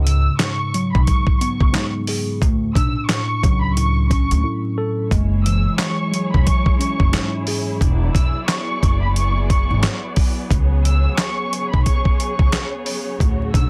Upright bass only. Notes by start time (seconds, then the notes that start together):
Already playing: C#2
0.95 B1
1.61 C#2
2.42 D2
2.76 B1
3.44 C#2
4.31 D2
5.12 F#1
6.35 E1
7.00 F#1
7.81 E1
8.15 E1
8.83 F#1
9.70 G#1
10.51 C#2
11.74 B1
12.40 C#2
13.21 D2
13.54 B1